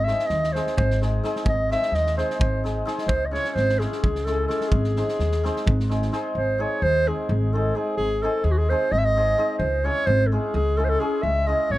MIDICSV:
0, 0, Header, 1, 5, 480
1, 0, Start_track
1, 0, Tempo, 465477
1, 1506, Time_signature, 7, 3, 24, 8
1, 12151, End_track
2, 0, Start_track
2, 0, Title_t, "Clarinet"
2, 0, Program_c, 0, 71
2, 39, Note_on_c, 0, 76, 108
2, 272, Note_on_c, 0, 75, 117
2, 288, Note_off_c, 0, 76, 0
2, 544, Note_on_c, 0, 72, 84
2, 559, Note_off_c, 0, 75, 0
2, 785, Note_off_c, 0, 72, 0
2, 791, Note_on_c, 0, 72, 92
2, 1025, Note_off_c, 0, 72, 0
2, 1535, Note_on_c, 0, 75, 95
2, 1760, Note_off_c, 0, 75, 0
2, 1774, Note_on_c, 0, 76, 116
2, 2012, Note_on_c, 0, 75, 117
2, 2027, Note_off_c, 0, 76, 0
2, 2237, Note_off_c, 0, 75, 0
2, 2244, Note_on_c, 0, 72, 81
2, 2463, Note_off_c, 0, 72, 0
2, 2474, Note_on_c, 0, 72, 84
2, 2707, Note_off_c, 0, 72, 0
2, 3175, Note_on_c, 0, 72, 111
2, 3360, Note_on_c, 0, 75, 50
2, 3376, Note_off_c, 0, 72, 0
2, 3424, Note_on_c, 0, 73, 125
2, 3440, Note_off_c, 0, 75, 0
2, 3613, Note_off_c, 0, 73, 0
2, 3613, Note_on_c, 0, 73, 78
2, 3658, Note_on_c, 0, 72, 121
2, 3673, Note_off_c, 0, 73, 0
2, 3908, Note_on_c, 0, 68, 98
2, 3924, Note_off_c, 0, 72, 0
2, 4138, Note_off_c, 0, 68, 0
2, 4144, Note_on_c, 0, 68, 93
2, 4384, Note_on_c, 0, 69, 101
2, 4399, Note_off_c, 0, 68, 0
2, 4603, Note_off_c, 0, 69, 0
2, 4609, Note_on_c, 0, 69, 85
2, 4830, Note_on_c, 0, 68, 101
2, 4846, Note_off_c, 0, 69, 0
2, 6300, Note_off_c, 0, 68, 0
2, 6557, Note_on_c, 0, 72, 87
2, 6817, Note_on_c, 0, 73, 99
2, 6832, Note_off_c, 0, 72, 0
2, 7044, Note_on_c, 0, 72, 123
2, 7060, Note_off_c, 0, 73, 0
2, 7302, Note_on_c, 0, 68, 98
2, 7317, Note_off_c, 0, 72, 0
2, 7524, Note_off_c, 0, 68, 0
2, 7531, Note_on_c, 0, 68, 76
2, 7769, Note_on_c, 0, 69, 85
2, 7785, Note_off_c, 0, 68, 0
2, 8001, Note_on_c, 0, 68, 77
2, 8016, Note_off_c, 0, 69, 0
2, 8215, Note_off_c, 0, 68, 0
2, 8221, Note_on_c, 0, 68, 110
2, 8483, Note_on_c, 0, 69, 92
2, 8499, Note_off_c, 0, 68, 0
2, 8710, Note_on_c, 0, 68, 96
2, 8725, Note_off_c, 0, 69, 0
2, 8781, Note_on_c, 0, 66, 89
2, 8796, Note_off_c, 0, 68, 0
2, 8846, Note_on_c, 0, 68, 93
2, 8862, Note_off_c, 0, 66, 0
2, 8966, Note_on_c, 0, 72, 101
2, 8982, Note_off_c, 0, 68, 0
2, 9197, Note_on_c, 0, 75, 121
2, 9213, Note_off_c, 0, 72, 0
2, 9263, Note_on_c, 0, 76, 101
2, 9278, Note_off_c, 0, 75, 0
2, 9333, Note_on_c, 0, 75, 120
2, 9349, Note_off_c, 0, 76, 0
2, 9881, Note_off_c, 0, 75, 0
2, 9887, Note_on_c, 0, 72, 93
2, 10158, Note_on_c, 0, 73, 115
2, 10174, Note_off_c, 0, 72, 0
2, 10382, Note_on_c, 0, 72, 127
2, 10398, Note_off_c, 0, 73, 0
2, 10591, Note_on_c, 0, 69, 54
2, 10607, Note_off_c, 0, 72, 0
2, 10653, Note_on_c, 0, 68, 90
2, 10668, Note_off_c, 0, 69, 0
2, 10882, Note_off_c, 0, 68, 0
2, 10888, Note_on_c, 0, 68, 107
2, 11111, Note_on_c, 0, 69, 94
2, 11126, Note_off_c, 0, 68, 0
2, 11184, Note_on_c, 0, 72, 91
2, 11199, Note_off_c, 0, 69, 0
2, 11232, Note_on_c, 0, 69, 105
2, 11247, Note_off_c, 0, 72, 0
2, 11344, Note_on_c, 0, 68, 93
2, 11360, Note_off_c, 0, 69, 0
2, 11573, Note_on_c, 0, 76, 105
2, 11588, Note_off_c, 0, 68, 0
2, 11830, Note_on_c, 0, 75, 98
2, 11845, Note_off_c, 0, 76, 0
2, 12083, Note_on_c, 0, 73, 112
2, 12099, Note_off_c, 0, 75, 0
2, 12151, Note_off_c, 0, 73, 0
2, 12151, End_track
3, 0, Start_track
3, 0, Title_t, "Hammered dulcimer"
3, 0, Program_c, 1, 15
3, 76, Note_on_c, 1, 56, 58
3, 83, Note_on_c, 1, 60, 60
3, 86, Note_on_c, 1, 63, 63
3, 93, Note_on_c, 1, 68, 67
3, 255, Note_off_c, 1, 60, 0
3, 256, Note_off_c, 1, 63, 0
3, 260, Note_off_c, 1, 68, 0
3, 547, Note_off_c, 1, 56, 0
3, 560, Note_on_c, 1, 56, 69
3, 569, Note_on_c, 1, 60, 67
3, 579, Note_on_c, 1, 63, 62
3, 582, Note_on_c, 1, 68, 81
3, 742, Note_off_c, 1, 60, 0
3, 747, Note_off_c, 1, 63, 0
3, 749, Note_off_c, 1, 68, 0
3, 1035, Note_off_c, 1, 56, 0
3, 1047, Note_on_c, 1, 56, 72
3, 1054, Note_on_c, 1, 60, 50
3, 1059, Note_on_c, 1, 63, 56
3, 1066, Note_on_c, 1, 68, 73
3, 1221, Note_off_c, 1, 60, 0
3, 1224, Note_off_c, 1, 63, 0
3, 1227, Note_off_c, 1, 68, 0
3, 1260, Note_off_c, 1, 56, 0
3, 1273, Note_on_c, 1, 56, 74
3, 1275, Note_on_c, 1, 60, 72
3, 1286, Note_on_c, 1, 68, 86
3, 1288, Note_on_c, 1, 63, 84
3, 1446, Note_off_c, 1, 60, 0
3, 1452, Note_off_c, 1, 68, 0
3, 1453, Note_off_c, 1, 63, 0
3, 1743, Note_off_c, 1, 56, 0
3, 1756, Note_on_c, 1, 56, 70
3, 1767, Note_on_c, 1, 60, 63
3, 1771, Note_on_c, 1, 63, 65
3, 1773, Note_on_c, 1, 68, 62
3, 1938, Note_off_c, 1, 60, 0
3, 1940, Note_off_c, 1, 63, 0
3, 1941, Note_off_c, 1, 68, 0
3, 2225, Note_off_c, 1, 56, 0
3, 2237, Note_on_c, 1, 56, 73
3, 2240, Note_on_c, 1, 60, 64
3, 2245, Note_on_c, 1, 63, 61
3, 2255, Note_on_c, 1, 68, 81
3, 2418, Note_off_c, 1, 60, 0
3, 2421, Note_off_c, 1, 63, 0
3, 2426, Note_off_c, 1, 68, 0
3, 2706, Note_off_c, 1, 56, 0
3, 2719, Note_on_c, 1, 56, 68
3, 2723, Note_on_c, 1, 60, 51
3, 2728, Note_on_c, 1, 63, 65
3, 2735, Note_on_c, 1, 68, 76
3, 2897, Note_off_c, 1, 60, 0
3, 2899, Note_off_c, 1, 63, 0
3, 2903, Note_off_c, 1, 68, 0
3, 2932, Note_off_c, 1, 56, 0
3, 2943, Note_on_c, 1, 60, 74
3, 2944, Note_on_c, 1, 56, 82
3, 2957, Note_on_c, 1, 68, 93
3, 2958, Note_on_c, 1, 63, 85
3, 3121, Note_off_c, 1, 60, 0
3, 3128, Note_off_c, 1, 68, 0
3, 3129, Note_off_c, 1, 63, 0
3, 3239, Note_off_c, 1, 56, 0
3, 3414, Note_on_c, 1, 61, 65
3, 3415, Note_on_c, 1, 56, 68
3, 3423, Note_on_c, 1, 64, 54
3, 3433, Note_on_c, 1, 68, 71
3, 3602, Note_off_c, 1, 61, 0
3, 3607, Note_off_c, 1, 64, 0
3, 3612, Note_off_c, 1, 68, 0
3, 3901, Note_off_c, 1, 56, 0
3, 3914, Note_on_c, 1, 56, 79
3, 3922, Note_on_c, 1, 61, 70
3, 3925, Note_on_c, 1, 64, 66
3, 3930, Note_on_c, 1, 68, 71
3, 4101, Note_off_c, 1, 61, 0
3, 4102, Note_off_c, 1, 64, 0
3, 4104, Note_off_c, 1, 68, 0
3, 4386, Note_off_c, 1, 56, 0
3, 4398, Note_on_c, 1, 56, 74
3, 4402, Note_on_c, 1, 61, 49
3, 4408, Note_on_c, 1, 64, 59
3, 4414, Note_on_c, 1, 68, 70
3, 4577, Note_off_c, 1, 61, 0
3, 4580, Note_off_c, 1, 64, 0
3, 4583, Note_off_c, 1, 68, 0
3, 4611, Note_off_c, 1, 56, 0
3, 4623, Note_on_c, 1, 56, 73
3, 4631, Note_on_c, 1, 61, 66
3, 4638, Note_on_c, 1, 64, 63
3, 4645, Note_on_c, 1, 68, 76
3, 4806, Note_off_c, 1, 61, 0
3, 4809, Note_off_c, 1, 64, 0
3, 4813, Note_off_c, 1, 68, 0
3, 4920, Note_off_c, 1, 56, 0
3, 5123, Note_on_c, 1, 56, 70
3, 5123, Note_on_c, 1, 60, 63
3, 5132, Note_on_c, 1, 63, 71
3, 5139, Note_on_c, 1, 68, 67
3, 5297, Note_off_c, 1, 60, 0
3, 5302, Note_off_c, 1, 63, 0
3, 5305, Note_off_c, 1, 68, 0
3, 5590, Note_off_c, 1, 56, 0
3, 5603, Note_on_c, 1, 56, 81
3, 5607, Note_on_c, 1, 60, 79
3, 5614, Note_on_c, 1, 63, 79
3, 5619, Note_on_c, 1, 68, 84
3, 5783, Note_off_c, 1, 60, 0
3, 5786, Note_off_c, 1, 63, 0
3, 5789, Note_off_c, 1, 68, 0
3, 6063, Note_off_c, 1, 56, 0
3, 6075, Note_on_c, 1, 56, 73
3, 6083, Note_on_c, 1, 60, 61
3, 6088, Note_on_c, 1, 63, 67
3, 6099, Note_on_c, 1, 68, 77
3, 6257, Note_off_c, 1, 60, 0
3, 6260, Note_off_c, 1, 63, 0
3, 6265, Note_off_c, 1, 68, 0
3, 6299, Note_off_c, 1, 56, 0
3, 6311, Note_on_c, 1, 56, 75
3, 6316, Note_on_c, 1, 60, 81
3, 6321, Note_on_c, 1, 63, 79
3, 6325, Note_on_c, 1, 68, 88
3, 6488, Note_off_c, 1, 60, 0
3, 6490, Note_off_c, 1, 63, 0
3, 6492, Note_off_c, 1, 68, 0
3, 6599, Note_off_c, 1, 56, 0
3, 6788, Note_on_c, 1, 56, 64
3, 6796, Note_on_c, 1, 60, 59
3, 6805, Note_on_c, 1, 63, 68
3, 6806, Note_on_c, 1, 68, 87
3, 6972, Note_off_c, 1, 60, 0
3, 6977, Note_off_c, 1, 63, 0
3, 6978, Note_off_c, 1, 68, 0
3, 7273, Note_off_c, 1, 56, 0
3, 7285, Note_on_c, 1, 56, 71
3, 7289, Note_on_c, 1, 60, 65
3, 7292, Note_on_c, 1, 63, 65
3, 7300, Note_on_c, 1, 68, 71
3, 7463, Note_off_c, 1, 60, 0
3, 7465, Note_off_c, 1, 63, 0
3, 7469, Note_off_c, 1, 68, 0
3, 7752, Note_off_c, 1, 56, 0
3, 7764, Note_on_c, 1, 56, 55
3, 7777, Note_on_c, 1, 60, 54
3, 7780, Note_on_c, 1, 63, 62
3, 7790, Note_on_c, 1, 68, 82
3, 7943, Note_off_c, 1, 60, 0
3, 7944, Note_off_c, 1, 63, 0
3, 7950, Note_off_c, 1, 68, 0
3, 7978, Note_off_c, 1, 56, 0
3, 7990, Note_on_c, 1, 56, 65
3, 7997, Note_on_c, 1, 60, 64
3, 8003, Note_on_c, 1, 63, 58
3, 8012, Note_on_c, 1, 68, 71
3, 8167, Note_off_c, 1, 60, 0
3, 8170, Note_off_c, 1, 63, 0
3, 8174, Note_off_c, 1, 68, 0
3, 8470, Note_off_c, 1, 56, 0
3, 8482, Note_on_c, 1, 56, 81
3, 8487, Note_on_c, 1, 60, 64
3, 8493, Note_on_c, 1, 63, 70
3, 8503, Note_on_c, 1, 68, 90
3, 8656, Note_off_c, 1, 60, 0
3, 8660, Note_off_c, 1, 63, 0
3, 8665, Note_off_c, 1, 68, 0
3, 8963, Note_off_c, 1, 56, 0
3, 8975, Note_on_c, 1, 56, 79
3, 8975, Note_on_c, 1, 60, 68
3, 8987, Note_on_c, 1, 63, 73
3, 8989, Note_on_c, 1, 68, 82
3, 9145, Note_off_c, 1, 60, 0
3, 9151, Note_off_c, 1, 63, 0
3, 9151, Note_off_c, 1, 68, 0
3, 9433, Note_off_c, 1, 56, 0
3, 9445, Note_on_c, 1, 56, 74
3, 9454, Note_on_c, 1, 60, 64
3, 9458, Note_on_c, 1, 63, 58
3, 9463, Note_on_c, 1, 68, 83
3, 9620, Note_off_c, 1, 60, 0
3, 9622, Note_off_c, 1, 63, 0
3, 9624, Note_off_c, 1, 68, 0
3, 9658, Note_off_c, 1, 56, 0
3, 9671, Note_on_c, 1, 56, 79
3, 9677, Note_on_c, 1, 60, 73
3, 9682, Note_on_c, 1, 63, 75
3, 9684, Note_on_c, 1, 68, 90
3, 9846, Note_off_c, 1, 60, 0
3, 9848, Note_off_c, 1, 63, 0
3, 9849, Note_off_c, 1, 68, 0
3, 9954, Note_off_c, 1, 56, 0
3, 10144, Note_on_c, 1, 56, 66
3, 10153, Note_on_c, 1, 61, 70
3, 10160, Note_on_c, 1, 64, 57
3, 10165, Note_on_c, 1, 68, 77
3, 10329, Note_off_c, 1, 61, 0
3, 10332, Note_off_c, 1, 64, 0
3, 10334, Note_off_c, 1, 68, 0
3, 10632, Note_off_c, 1, 56, 0
3, 10640, Note_on_c, 1, 56, 70
3, 10647, Note_on_c, 1, 61, 73
3, 10651, Note_on_c, 1, 64, 63
3, 10660, Note_on_c, 1, 68, 83
3, 10819, Note_off_c, 1, 61, 0
3, 10820, Note_off_c, 1, 64, 0
3, 10826, Note_off_c, 1, 68, 0
3, 11095, Note_off_c, 1, 56, 0
3, 11107, Note_on_c, 1, 56, 76
3, 11117, Note_on_c, 1, 61, 59
3, 11123, Note_on_c, 1, 64, 63
3, 11133, Note_on_c, 1, 68, 79
3, 11291, Note_off_c, 1, 61, 0
3, 11294, Note_off_c, 1, 64, 0
3, 11299, Note_off_c, 1, 68, 0
3, 11332, Note_off_c, 1, 56, 0
3, 11344, Note_on_c, 1, 56, 69
3, 11345, Note_on_c, 1, 61, 77
3, 11356, Note_on_c, 1, 64, 64
3, 11359, Note_on_c, 1, 68, 81
3, 11519, Note_off_c, 1, 61, 0
3, 11524, Note_off_c, 1, 64, 0
3, 11525, Note_off_c, 1, 68, 0
3, 11811, Note_off_c, 1, 56, 0
3, 11824, Note_on_c, 1, 56, 76
3, 11836, Note_on_c, 1, 61, 63
3, 11842, Note_on_c, 1, 64, 63
3, 11846, Note_on_c, 1, 68, 74
3, 12009, Note_off_c, 1, 61, 0
3, 12012, Note_off_c, 1, 64, 0
3, 12014, Note_off_c, 1, 68, 0
3, 12151, Note_off_c, 1, 56, 0
3, 12151, End_track
4, 0, Start_track
4, 0, Title_t, "Upright bass"
4, 0, Program_c, 2, 32
4, 0, Note_on_c, 2, 32, 90
4, 113, Note_off_c, 2, 32, 0
4, 310, Note_on_c, 2, 39, 85
4, 604, Note_off_c, 2, 39, 0
4, 798, Note_on_c, 2, 32, 109
4, 1222, Note_off_c, 2, 32, 0
4, 1497, Note_on_c, 2, 32, 81
4, 1793, Note_off_c, 2, 32, 0
4, 1977, Note_on_c, 2, 39, 79
4, 2276, Note_off_c, 2, 39, 0
4, 2470, Note_on_c, 2, 32, 84
4, 2897, Note_off_c, 2, 32, 0
4, 3162, Note_on_c, 2, 37, 81
4, 3463, Note_off_c, 2, 37, 0
4, 3667, Note_on_c, 2, 32, 89
4, 3963, Note_off_c, 2, 32, 0
4, 4165, Note_on_c, 2, 37, 94
4, 4587, Note_off_c, 2, 37, 0
4, 4866, Note_on_c, 2, 32, 89
4, 5160, Note_off_c, 2, 32, 0
4, 5355, Note_on_c, 2, 39, 87
4, 5648, Note_off_c, 2, 39, 0
4, 5841, Note_on_c, 2, 32, 105
4, 6264, Note_off_c, 2, 32, 0
4, 6548, Note_on_c, 2, 32, 87
4, 6841, Note_off_c, 2, 32, 0
4, 7033, Note_on_c, 2, 39, 93
4, 7326, Note_off_c, 2, 39, 0
4, 7519, Note_on_c, 2, 32, 105
4, 7941, Note_off_c, 2, 32, 0
4, 8224, Note_on_c, 2, 32, 68
4, 8517, Note_off_c, 2, 32, 0
4, 8702, Note_on_c, 2, 39, 100
4, 8998, Note_off_c, 2, 39, 0
4, 9194, Note_on_c, 2, 32, 86
4, 9617, Note_off_c, 2, 32, 0
4, 9894, Note_on_c, 2, 37, 102
4, 10189, Note_off_c, 2, 37, 0
4, 10383, Note_on_c, 2, 32, 109
4, 10678, Note_off_c, 2, 32, 0
4, 10870, Note_on_c, 2, 37, 105
4, 11294, Note_off_c, 2, 37, 0
4, 11583, Note_on_c, 2, 37, 89
4, 11875, Note_off_c, 2, 37, 0
4, 12066, Note_on_c, 2, 32, 82
4, 12151, Note_off_c, 2, 32, 0
4, 12151, End_track
5, 0, Start_track
5, 0, Title_t, "Drums"
5, 78, Note_on_c, 9, 38, 29
5, 182, Note_off_c, 9, 38, 0
5, 199, Note_on_c, 9, 38, 26
5, 302, Note_off_c, 9, 38, 0
5, 305, Note_on_c, 9, 38, 27
5, 408, Note_off_c, 9, 38, 0
5, 451, Note_on_c, 9, 38, 28
5, 554, Note_off_c, 9, 38, 0
5, 572, Note_on_c, 9, 38, 30
5, 675, Note_off_c, 9, 38, 0
5, 689, Note_on_c, 9, 38, 32
5, 792, Note_off_c, 9, 38, 0
5, 806, Note_on_c, 9, 36, 88
5, 909, Note_off_c, 9, 36, 0
5, 935, Note_on_c, 9, 38, 29
5, 1038, Note_off_c, 9, 38, 0
5, 1052, Note_on_c, 9, 38, 31
5, 1155, Note_off_c, 9, 38, 0
5, 1279, Note_on_c, 9, 38, 33
5, 1382, Note_off_c, 9, 38, 0
5, 1401, Note_on_c, 9, 38, 32
5, 1504, Note_off_c, 9, 38, 0
5, 1504, Note_on_c, 9, 36, 93
5, 1607, Note_off_c, 9, 36, 0
5, 1766, Note_on_c, 9, 38, 27
5, 1869, Note_off_c, 9, 38, 0
5, 1882, Note_on_c, 9, 38, 27
5, 1985, Note_off_c, 9, 38, 0
5, 2005, Note_on_c, 9, 38, 36
5, 2108, Note_off_c, 9, 38, 0
5, 2131, Note_on_c, 9, 38, 34
5, 2234, Note_off_c, 9, 38, 0
5, 2248, Note_on_c, 9, 38, 36
5, 2351, Note_off_c, 9, 38, 0
5, 2376, Note_on_c, 9, 38, 31
5, 2479, Note_off_c, 9, 38, 0
5, 2485, Note_on_c, 9, 36, 103
5, 2588, Note_off_c, 9, 36, 0
5, 2734, Note_on_c, 9, 38, 30
5, 2837, Note_off_c, 9, 38, 0
5, 2964, Note_on_c, 9, 38, 37
5, 3068, Note_off_c, 9, 38, 0
5, 3076, Note_on_c, 9, 38, 39
5, 3179, Note_off_c, 9, 38, 0
5, 3188, Note_on_c, 9, 36, 100
5, 3291, Note_off_c, 9, 36, 0
5, 3447, Note_on_c, 9, 38, 25
5, 3550, Note_off_c, 9, 38, 0
5, 3554, Note_on_c, 9, 38, 32
5, 3657, Note_off_c, 9, 38, 0
5, 3679, Note_on_c, 9, 38, 28
5, 3782, Note_off_c, 9, 38, 0
5, 3809, Note_on_c, 9, 38, 30
5, 3912, Note_off_c, 9, 38, 0
5, 3925, Note_on_c, 9, 38, 25
5, 4029, Note_off_c, 9, 38, 0
5, 4046, Note_on_c, 9, 38, 31
5, 4149, Note_off_c, 9, 38, 0
5, 4163, Note_on_c, 9, 36, 88
5, 4266, Note_off_c, 9, 36, 0
5, 4285, Note_on_c, 9, 38, 29
5, 4388, Note_off_c, 9, 38, 0
5, 4396, Note_on_c, 9, 38, 27
5, 4499, Note_off_c, 9, 38, 0
5, 4639, Note_on_c, 9, 38, 31
5, 4742, Note_off_c, 9, 38, 0
5, 4751, Note_on_c, 9, 38, 31
5, 4854, Note_off_c, 9, 38, 0
5, 4864, Note_on_c, 9, 36, 95
5, 4967, Note_off_c, 9, 36, 0
5, 4992, Note_on_c, 9, 38, 18
5, 5095, Note_off_c, 9, 38, 0
5, 5118, Note_on_c, 9, 38, 28
5, 5222, Note_off_c, 9, 38, 0
5, 5244, Note_on_c, 9, 38, 31
5, 5347, Note_off_c, 9, 38, 0
5, 5357, Note_on_c, 9, 38, 30
5, 5460, Note_off_c, 9, 38, 0
5, 5483, Note_on_c, 9, 38, 29
5, 5586, Note_off_c, 9, 38, 0
5, 5620, Note_on_c, 9, 38, 27
5, 5723, Note_off_c, 9, 38, 0
5, 5736, Note_on_c, 9, 38, 23
5, 5839, Note_off_c, 9, 38, 0
5, 5852, Note_on_c, 9, 36, 95
5, 5955, Note_off_c, 9, 36, 0
5, 5981, Note_on_c, 9, 38, 26
5, 6084, Note_off_c, 9, 38, 0
5, 6089, Note_on_c, 9, 38, 26
5, 6192, Note_off_c, 9, 38, 0
5, 6209, Note_on_c, 9, 38, 23
5, 6312, Note_off_c, 9, 38, 0
5, 6318, Note_on_c, 9, 38, 25
5, 6421, Note_off_c, 9, 38, 0
5, 12151, End_track
0, 0, End_of_file